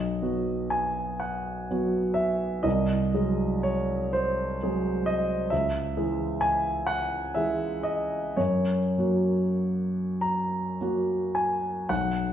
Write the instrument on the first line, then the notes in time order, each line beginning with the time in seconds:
grand piano
Already playing: B1 D#5
0.22 F#3 B3 F#4
0.70 G#5
1.20 F#5
1.71 F#3 B3 F#4
2.14 E5
2.63 C2 D#5
3.14 F#3 G#3 G#4
3.63 C#5
4.13 C5
4.63 F#3 G#3 G#4
5.06 D#5
5.50 C#2 E5
5.97 E3 G#3 G#4
6.41 G#5
6.87 F#5
7.35 E3 G#3 G#4 E5
7.83 D#5
8.37 F#2 C#5
8.98 F#3 A#3 F#4
10.21 A#5
10.81 F#3 A#3 F#4
11.35 G#5
11.89 B1 F#5